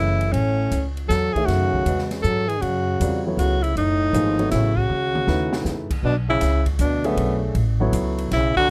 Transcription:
Already playing: F#1 C#3 E3 A3 E4 G#4 B4 D#5
0.21 ride
0.32 A1 A2 C#4, ride
0.71 C#2, hi-hat pedal, ride
0.97 ride
1.08 E2 F#3 A4, snare, hi-hat pedal, ride
1.33 D#3 E3 A3 G#4 C#5 E5, muted upright bass stroke, kick, ride
1.46 F#2 C#3 F#4, snare, ride
1.74 kick
1.85 E2 G#3 C#4 F#4 B4 D#5, hi-hat pedal, ride
1.99 snare
2.11 snare, ride
2.22 G#2 F#3 A4, hi-hat pedal
2.47 E3 G#4, ride
2.60 F#2 C#3 F#4, ride
3.00 E2 G3 C4 F4 A#4 D5, hi-hat pedal, ride
3.26 F#3 B3 E4 A4 C#5
3.36 C#2 C#3 F#4, hi-hat pedal, ride
3.62 C#3 E4, ride
3.75 F#1 A2 D#4, ride
4.13 G#1 F3 A#3 D#4 G#4 C5, hi-hat pedal, ride
4.38 F#3 B3 E4 A4 C#5, ride
4.51 A1 C#3 E4, snare, hi-hat pedal, ride
4.75 C#3 F#4, kick
4.90 C#2, mid tom
5.15 mid tom
5.27 D#2 A3 D#4 E4 G#4 B4, snare
5.53 snare
5.65 E2, snare, hi-hat pedal
5.90 muted upright bass stroke, kick, crash
6.03 B1 B2 D4
6.28 C#3 E4
6.41 C#2, snare, hi-hat pedal, ride
6.66 kick, ride
6.79 D2 B2 D4, hi-hat pedal, ride
7.04 F#2 A3 B3 D4 G#4 C#5 E5, ride
7.16 B1, ride
7.55 A1, ride
7.80 F#3 B3 E4 A4 C#5
7.93 C#2, hi-hat pedal, ride
8.18 ride
8.31 B1 C#3 E4, snare, ride
8.56 D3 F#4, muted upright bass stroke, kick

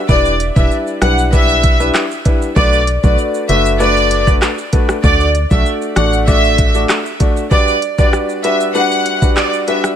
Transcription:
0.09 E1 G3 D4 E4 B4 D5, kick, shaker
0.25 shaker
0.40 closed hi-hat, shaker
0.56 E1 G3 D4 E4 B4 E5, kick, shaker
0.71 shaker
0.87 shaker
1.01 B1 G3 D4 E4 B4 F#5, cross-stick, closed hi-hat, shaker
1.18 shaker
1.32 G3 D4 E4 B4 E5, kick, shaker
1.49 shaker
1.64 kick, closed hi-hat, shaker
1.80 G3 D4 E4 B4, shaker
1.95 cross-stick, clap, shaker
2.11 shaker
2.25 G3 D4 E4 B4, kick, closed hi-hat, shaker
2.42 shaker
2.56 B1 A3 D4 F#4 B4 D5, kick, shaker
2.73 shaker
2.87 closed hi-hat, shaker
3.03 B1 A3 D4 F#4 B4 D5, kick, shaker
3.18 shaker
3.34 shaker
3.49 F#1 A3 D4 F#4 B4 E5, closed hi-hat, shaker
3.66 shaker
3.80 A3 D4 F#4 B4 D5, shaker
3.96 shaker
4.11 closed hi-hat, shaker
4.27 A3 D4 F#4 B4, kick, shaker
4.42 cross-stick, clap, shaker
4.58 shaker
4.72 A3 D4 F#4 B4, kick, closed hi-hat, shaker
4.89 cross-stick, shaker
5.03 D2 A3 D4 F#4 D5, kick, shaker
5.20 shaker
5.35 closed hi-hat, shaker
5.51 B1 A3 D4 F#4 D5 E5, kick, shaker
5.66 shaker
5.82 shaker
5.96 A1 A3 D4 F#4 D5 F#5, cross-stick, closed hi-hat, shaker
6.13 shaker
6.27 A3 D4 F#4 D5 E5, kick, shaker
6.44 shaker
6.58 kick, closed hi-hat, shaker
6.75 A3 D4 F#4 D5, shaker
6.89 cross-stick, clap, shaker
7.06 shaker
7.20 A3 D4 F#4 D5, kick, closed hi-hat, shaker
7.37 shaker
7.51 G3 D4 F#4 B4 D5, kick, shaker
7.68 shaker
7.82 closed hi-hat, shaker
7.98 G3 D4 F#4 B4 D5, kick, shaker
8.13 cross-stick, shaker
8.29 shaker
8.44 G3 D4 F#4 B4 E5, closed hi-hat, shaker
8.60 shaker
8.75 G3 D4 F#4 B4 F#5, shaker
8.91 shaker
9.06 closed hi-hat, shaker
9.22 G3 D4 F#4 B4, kick, shaker
9.37 D5, cross-stick, clap, shaker
9.53 shaker
9.67 G3 D4 F#4 B4 E5, closed hi-hat, shaker
9.84 cross-stick, shaker

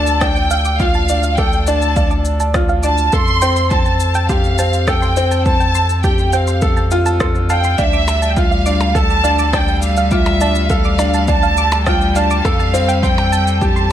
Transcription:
Already playing: D2 D4 F4 A4 A5
0.07 shaker
0.21 D4 G5 A5, kick, cross-stick, shaker
0.36 shaker
0.51 F5, shaker
0.65 D6, shaker
0.80 F4 F5, kick, shaker
0.94 A5, shaker
1.09 D4, shaker
1.23 F5, shaker
1.38 A4 G5 D6, kick, shaker
1.53 shaker
1.67 D4 A5, shaker
1.82 shaker
1.96 D4 F5, kick, shaker
2.11 D6, shaker
2.25 shaker
2.40 A5, shaker
2.54 F4, kick, cross-stick, shaker
2.69 F5, shaker
2.83 D4 A5 D6, shaker
2.98 shaker
3.12 F2 A4 A5 C6, kick, shaker
3.27 shaker
3.42 C4 G5, shaker
3.56 C6, shaker
3.71 C4 A5, kick, shaker
3.85 A5, shaker
4.00 shaker
4.15 G5, shaker
4.29 G4 F5 C6, kick, shaker
4.44 shaker
4.58 C4 A5, shaker
4.73 shaker
4.88 A4 G5, kick, cross-stick, shaker
5.02 C6, shaker
5.17 C4, shaker
5.31 A5, shaker
5.46 C4 A5, kick, shaker
5.60 G5, shaker
5.75 C6, shaker
5.89 shaker
6.04 G4 G5 A5, kick, shaker
6.18 shaker
6.33 C4 F5 G5, shaker
6.47 C6, shaker
6.62 A4, kick, shaker
6.77 A5, shaker
6.91 F4, shaker
7.06 A5, shaker
7.20 A4 C6, kick, cross-stick, shaker
7.35 shaker
7.50 F5 G5 A5, shaker
7.64 C6, shaker
7.78 D2 G3 D4 E5 F5, kick, shaker
7.93 D6, shaker
8.08 percussion blips, shaker
8.22 A5, shaker
8.30 G5
8.37 F4 F5, kick, shaker
8.51 F5, shaker
8.66 D4 D6, shaker
8.81 percussion blips, shaker
8.95 A4 A5, kick, shaker
9.10 shaker
9.24 D4 F5, shaker
9.39 D6, shaker
9.53 D4 G5, kick, cross-stick, percussion blips, shaker
9.68 A5, shaker
9.82 F5, shaker
9.97 F5, shaker
10.11 F4 E5 D6, kick, shaker
10.26 percussion blips, shaker
10.41 D4 A5, shaker
10.55 shaker
10.70 A4 F5, kick, shaker
10.85 D6, shaker
10.98 D4, percussion blips, shaker
11.14 A5, shaker
11.28 D4 A5, kick, shaker
11.43 F5, shaker
11.57 D6, shaker
11.72 percussion blips, shaker
11.87 F4 G5 A5, kick, cross-stick, shaker
12.01 shaker
12.16 D4 F5 A5, shaker
12.31 D6, shaker
12.45 F2 A4 F5, kick, percussion blips, shaker
12.60 A5, shaker
12.74 C4, shaker
12.88 G5, shaker
13.03 C4 G5 C6, kick, shaker
13.18 percussion blips, shaker
13.32 A5, shaker
13.47 shaker
13.61 G4 G5 A5, kick, shaker
13.76 C6, shaker

